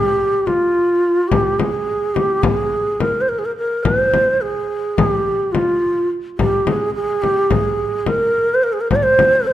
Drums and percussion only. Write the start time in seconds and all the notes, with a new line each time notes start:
0.47 frame drum
1.31 frame drum
1.60 frame drum
2.16 frame drum
2.43 frame drum
3.00 frame drum
3.85 frame drum
4.14 frame drum
4.98 frame drum
5.55 frame drum
6.39 frame drum
6.67 frame drum
7.24 frame drum
7.51 frame drum
8.06 frame drum
8.91 frame drum
9.19 frame drum